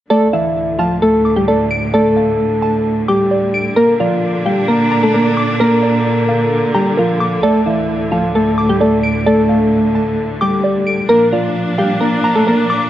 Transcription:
0.10 D2 A2 D3 A3 A4 D5
0.33 E3 E4 F5
0.79 F3 F4 A5
1.02 A3 A4
1.25 D6
1.36 G3 G4
1.48 A3 A4 D5
1.71 D7
1.94 A3 A4 D5
2.17 F5
2.62 A5
3.08 G3 G4 D6
3.31 D5
3.54 D7
3.76 A#2 A#3 D4 A#4
4.00 F3 F4 D5
4.46 G3 G4 F5
4.68 A#3 A#4
4.91 A#5
5.03 A3 A4
5.14 A#3 A#4
5.37 D6
5.60 A#3 A#4
5.83 D5
6.29 F5
6.74 G3 G4 A#5
6.97 F3 F4 A#4
7.20 D6
7.43 D2 A2 A3 A4 D5
7.66 E3 E4 F5
8.12 F3 F4 A5
8.35 A3 A4
8.58 D6
8.69 G3 G4
8.81 A3 A4 D5
9.03 D7
9.26 A3 A4 D5
9.49 F5
9.95 A5
10.41 G3 G4 D6
10.64 D5
10.87 D7
11.09 A#2 F3 A#3 D4 A#4
11.32 F3 F4 D5
11.78 G3 G4 F5
12.01 A#3 A#4
12.24 A#5
12.35 A3 A4
12.47 A#3 A#4
12.70 D6

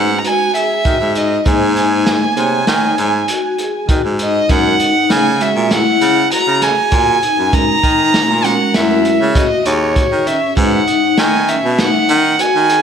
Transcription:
Already playing: G#2 G#3 C#4 F#4 B4 F#5
0.18 A#5
0.25 F#4 G#5, closed hi-hat
0.55 G#4 E5, closed hi-hat
0.85 D#3 F#4, kick, closed hi-hat
1.00 G#2
1.15 D#4 D#5, closed hi-hat
1.46 G#2 A#3 D#4 G#4 C5 G#5, kick, closed hi-hat
1.76 D#4, closed hi-hat
2.07 snare, closed hi-hat
2.37 C3 A#3 D#4 G#4 C5 C#5, closed hi-hat
2.67 D#3 D#4, snare, closed hi-hat
2.98 G#2, closed hi-hat
3.28 F#4, closed hi-hat
3.58 G#4, closed hi-hat
3.89 D#3 F#4, kick, closed hi-hat
4.04 G#2
4.19 D#4 D#5, closed hi-hat
4.49 F#2 G#3 C#4 D#4 F#4 A#4 F#5, kick, closed hi-hat
4.80 D#4, closed hi-hat
5.10 C#3 G#5, snare, closed hi-hat
5.40 G#3 C#4 F#4 G#4 E5, closed hi-hat
5.56 A#2
5.71 E4 F#5, snare, closed hi-hat
6.01 C#3, closed hi-hat
6.32 F#4 A#5, closed hi-hat
6.47 C#3
6.62 G#4 G#5, snare, closed hi-hat
6.92 A#2 F#4, kick, closed hi-hat
7.23 D#4, closed hi-hat
7.38 F#2
7.53 G#3 C#4 D#4 F#4 A#4 A#5, kick, closed hi-hat
7.83 D#3 D#4, kick, closed hi-hat
8.14 snare, closed hi-hat
8.29 A#2
8.44 G#3 C#4 F#4 A#4 F#5, closed hi-hat
8.74 F#2 E4 E5, snare, closed hi-hat
9.05 closed hi-hat
9.20 C#3
9.35 F#4 D#5, kick, snare, closed hi-hat
9.66 D#2 G#4 C#5, closed hi-hat
9.96 F#4, kick, closed hi-hat
10.12 D#3
10.26 C#4 E5, closed hi-hat
10.57 G#2 G#3 C#4 D#4 F#4 B4 F#5, kick, closed hi-hat
10.87 D#4, closed hi-hat
11.18 D#3 G#5, snare, closed hi-hat
11.48 C#4 E5, closed hi-hat
11.64 B2
11.78 D#4 F#5, snare, closed hi-hat
12.09 D#3, closed hi-hat
12.39 F#4 G#5, closed hi-hat
12.55 D#3
12.70 closed hi-hat

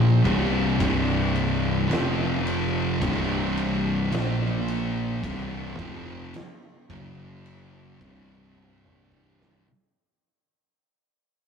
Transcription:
Already playing: A#1 A#2 F3 A#3
0.23 C1 C2 G2 C3, kick, ride
0.79 C1 C2 G2 C3, kick, ride
1.36 ride
1.90 F1 F2 C3 F3, snare, ride
2.47 ride
3.02 C1 C2 G2 C3, kick, ride
3.57 ride
4.12 A#1 A#2 F3 A#3, snare, ride
4.68 ride
5.23 C1 C2 G2 C3, kick, ride
5.78 F1 F2 C3 F3, kick, ride
6.34 snare, ride
6.90 F#1 F#2 C#3 F#3, kick, ride
7.46 ride
8.00 C1 C2 G2 C3, kick, ride
8.57 high tom
8.84 mid tom
9.12 kick
9.42 snare

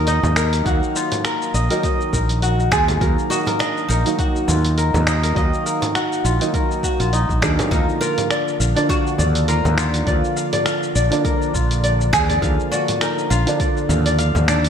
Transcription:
Already playing: D#2 D#3 F#3 A#3 D#4 F4 A#4 F5
0.07 D#4 D#5, closed hi-hat, shaker
0.23 D#2, frame drum, shaker
0.36 A#4, finger snap, shaker
0.53 closed hi-hat, shaker
0.64 D#2 D#3 F#3 A#3 F#4 F5, kick, closed hi-hat, shaker
0.83 shaker
0.96 F4, shaker
1.12 closed hi-hat, frame drum, shaker
1.25 A#4, finger snap, closed hi-hat, shaker
1.42 shaker
1.54 A#1 D#5, shaker
1.70 D#3 F#3 A#3 D#4 A#4, closed hi-hat, shaker
1.83 D#5, kick, closed hi-hat, shaker
2.01 shaker
2.13 A#1 A#4, kick, shaker
2.29 closed hi-hat, shaker
2.42 F#4, closed hi-hat, shaker
2.60 shaker
2.71 D#2 F4 G#4, finger snap, kick, shaker
2.88 closed hi-hat, frame drum, shaker
2.99 D#2 D#3 F#3 A#3 A#4, kick, closed hi-hat, shaker
3.03 F5
3.19 shaker
3.30 F#4 D#5, shaker
3.47 A#4, closed hi-hat, frame drum, shaker
3.59 D4 D#5, finger snap, closed hi-hat, shaker
3.77 shaker
3.89 A#1 D#4 A#4, shaker
4.05 D#3 F#3 A#3 D#4, closed hi-hat, shaker
4.19 F#4, kick, closed hi-hat, shaker
4.36 shaker
4.48 D#2 F4, frame drum, shaker
4.65 closed hi-hat, shaker
4.78 A#4, closed hi-hat, shaker
4.94 D#2, frame drum, shaker
5.07 D#5, finger snap, shaker
5.23 A#4, closed hi-hat, shaker
5.34 D#2 D#3 F#3 A#3 D#5, kick, closed hi-hat, shaker
5.38 F5
5.54 shaker
5.66 A#4, shaker
5.82 closed hi-hat, frame drum, shaker
5.95 F#4, finger snap, closed hi-hat, shaker
6.12 shaker
6.25 A#1 F4, shaker
6.40 D#3 F#3 A#3 D#4, closed hi-hat, shaker
6.54 A#4, kick, closed hi-hat, shaker
6.71 shaker
6.83 F#4, kick, shaker
7.00 A#1 F4, closed hi-hat, shaker
7.13 D#4, closed hi-hat, shaker
7.29 A#1, kick, shaker
7.41 D#2 D#3 F#3 A#3 D4 G#4 F5, finger snap, kick, shaker
7.59 F5, closed hi-hat, frame drum, shaker
7.70 D#2 D3 F3 A#3 D#4 F4 A#4, kick, closed hi-hat, shaker
7.89 shaker
8.01 F4 A#4, shaker
8.18 closed hi-hat, frame drum, shaker
8.31 D5, finger snap, closed hi-hat, shaker
8.48 shaker
8.60 A#1 F5, shaker
8.75 D3 F3 A#3 D4 D5, closed hi-hat, shaker
8.89 F#4 F5, kick, closed hi-hat, shaker
9.07 shaker
9.18 D#2 D5, frame drum, shaker
9.35 closed hi-hat, shaker
9.48 F4 A#4, closed hi-hat, shaker
9.65 D#2, frame drum, shaker
9.78 F4, finger snap, shaker
9.94 closed hi-hat, shaker
10.05 D#2 D3 F3 A#3 D5, kick, closed hi-hat, shaker
10.09 F4
10.24 shaker
10.36 F5, shaker
10.53 D5, closed hi-hat, frame drum, shaker
10.66 F5, finger snap, closed hi-hat, shaker
10.83 shaker
10.95 A#1 D5, shaker
11.11 D3 F3 A#3 D4, closed hi-hat, shaker
11.25 A#4, kick, closed hi-hat, shaker
11.42 shaker
11.54 A#1 F4, kick, shaker
11.71 closed hi-hat, shaker
11.84 D5, closed hi-hat, shaker
12.01 shaker
12.13 D#2 G#4 F5, finger snap, kick, shaker
12.29 D5, closed hi-hat, frame drum, shaker
12.40 D#2 D3 F3 A#3 F4 F5, kick, closed hi-hat, shaker
12.60 shaker
12.71 F#4 D5, shaker
12.88 closed hi-hat, frame drum, shaker
13.01 D#4 A#4, finger snap, closed hi-hat, shaker
13.18 shaker
13.30 A#1 F4, shaker
13.46 D3 F3 A#3 D4, closed hi-hat, shaker
13.60 D5, kick, closed hi-hat, shaker
13.77 shaker
13.89 D#2 F5, frame drum, shaker
14.06 D5, closed hi-hat, shaker
14.19 F5, closed hi-hat, shaker
14.35 D#2, frame drum, shaker
14.48 D4 D5, finger snap, shaker
14.64 closed hi-hat, shaker

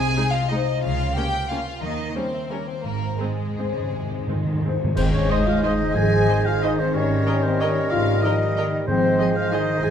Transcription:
Already playing: C2 C3 G#4 C5 D#5 G#5
0.17 G#3 D#4 G#4
0.32 F4 D#5 F5
0.48 G#3 D#4 C5 D#5
0.68 G#4
0.80 C#2 C#3 F4 F5
1.00 A#3
1.14 A#3 C#4 G4 A#4 G5
1.33 F5
1.49 A#3 C#4 F4 A#4 F5
1.66 F4
1.80 D#2 D#3 D#4 D#5
1.97 A#3
2.15 G3 C4 C#4 G4 C5
2.33 E5
2.50 G3 A#3 C#4 A#4
2.67 C4 G4 C5
2.83 G#1 G#2 A#3 A#4
2.93 G#2
2.99 G#2 C4
3.15 G#2 G#3 G#4
3.19 G#2 G#3 C4 G#4
3.31 G#2
3.38 G#2 D#5
3.49 G#2
3.56 G#2 G#3 C4 C5
3.64 G#2
3.73 G#2 C#3 G#4
3.80 G#2
3.87 G#2
3.91 G#1 G#2 C3
4.02 G#2
4.08 G#2 C4
4.19 G#2
4.26 G#2 D#3 G#3 C4 G#4
4.35 G#2
4.44 G#2 D#5
4.53 G#2
4.61 G#2 C5
4.65 G#2 G#3 C4
4.77 G#2 C3 G#4
4.84 G#2
4.95 G#1 G#2 G#3 C4 C5 D#5, concert bass drum, crash
5.11 C4 C#4 C#5
5.29 D#4 C5 D#5 G#5
5.46 F4 G#4 F5
5.62 D#4 C5 D#5 G#5
5.80 D#3
5.95 G#1 G#2 F3 G#4 G#5
6.11 C4
6.27 D#3 D#4 C5 D#5 G#5
6.44 F4 G#4 F5
6.61 D#4 C5 D#5 G#5
6.78 D#3 C4 C5
6.93 G#1 G#2 G3 C#4 A#4 C#5 D#5
7.09 A#3
7.26 A#4 D#5 G5
7.43 C4 G4 C5
7.60 C#4 D#4 A#4 C#5 D#5 G5
7.78 D#3
7.91 G#1 G#2 C#3 F4 F5
8.08 A#3
8.23 F3 D#4 A#4 D#5 G5
8.41 G4
8.57 D#3 D#4 A#4 D#5 G5
8.74 D#3
8.87 G#1 G#2 F3 G#3 C4 C5 D#5
9.04 C4
9.19 D#4 G#4 D#5 G#5
9.36 F4 G#4 F5
9.52 D#3 D#4 G#4 D#5 G#5
9.69 D#3
9.84 G#1 G#2 F3 G#4 G#5

